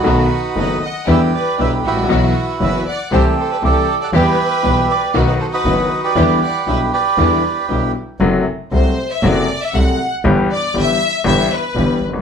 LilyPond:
<<
  \new Staff \with { instrumentName = "Bandoneon" } { \time 4/4 \key e \minor \tempo 4 = 118 << { b'4 dis''8 fis''8 e''8 d''8 e''8 b'8~ | b'4 e''8 fis''8 e''8 c''16 d''16 d''8. fis''16 | e''4. d''8 b'16 dis''16 c''16 dis''4 d''16~ | d''8 fis''8 e''8 d''4. r4 |
r1 | r1 | } \\ { <dis' fis'>4. r8 <g' b'>4. <e' fis'>8~ | <e' fis'>4. r8 <g' a'>4 <g' a'>4 | <g' b'>2 <dis' fis'>8. <fis' b'>4 <g' b'>16~ | <g' b'>4. <g' b'>2 r8 |
r1 | r1 | } >> }
  \new Staff \with { instrumentName = "Violin section" } { \time 4/4 \key e \minor fis'4 b'8 dis''8 b'8 b'8 b'8 fis'8~ | fis'4 b'8 d''8 c''8 a'16 b'16 a'8. d''16 | b'4. b'8 fis'16 b'16 a'16 b'4 b'16~ | b'8 d''8 b'8 b'4. r4 |
r4 c''8. e''16 d''8. e''16 fis''8. r16 | r8 d''8 e''4 e''8 b'4 r8 | }
  \new Staff \with { instrumentName = "String section" } { \time 4/4 \key e \minor <b dis' a'>8 r8 <b dis' a'>8 r8 <d' e' g'>8 r8 <d' e' g'>8 r8 | <b e' fis'>8 r8 <b e' fis'>8 r8 <a c' g'>8 r8 <a c' g'>8 r8 | <b e' g'>8 r8 <b e' g'>8 r8 <b dis' fis'>8 r8 <b dis' fis'>8 r8 | <d' e' g'>8 r8 <d' e' g'>8 r8 <d' e' g'>8 r8 <d' e' g'>8 r8 |
r1 | r1 | }
  \new Staff \with { instrumentName = "Grand piano" } { \clef bass \time 4/4 \key e \minor <b,, b, dis a b fis'>8 r8 <fis,, fis, dis a b fis'>8 r8 <e, d e g b e'>8 r8 <b,, b, d g b e'>8 r32 gis,,32 a,,32 ais,,32 | <b,, b, e fis b fis'>8 r8 <fis,, fis, e fis b fis'>8 r8 <c, c e a c' g'>8 r8 <c, c e a c' g'>8 r8 | <e, e g b g'>8 r8 <b,, b, e g b g'>8 r8 <b,, b, dis fis b fis'>8 r8 <fis,, fis, dis fis b fis'>8 r8 | <e, d e g b e'>8 r8 <b,, b, d g b e'>8 r8 <e, d e g b e'>8 r8 <b,, b, d g b e'>8 r8 |
<fis, c fis a fis'>8 r8 <c, c fis a fis'>8 r8 <fis, c fis a fis'>8 r8 <c, c fis a fis'>8 r8 | <g,, g, e g b g'>8 r8 <g,, g, e g b g'>8 r8 <g,, g, e g b g'>8 r8 <g,, g, e g b g'>8 r32 fis,,32 g,,32 r32 | }
  \new Staff \with { instrumentName = "Double bass" } { \clef bass \time 4/4 \key e \minor b,,8 r8 fis,,8 r8 e,8 r8 b,,8 a,,8 | b,,8 r8 fis,,8 r8 c,8 r8 c,8 r8 | e,8 r8 b,,8 r8 b,,8 r8 fis,,8 r8 | e,8 r8 b,,8 r8 e,8 r8 b,,8 r8 |
fis,,8 r8 c,8 r8 fis,,8 r8 c,8 r8 | g,,8 r8 g,,8 r8 g,,8 r8 g,,8 g,,8 | }
>>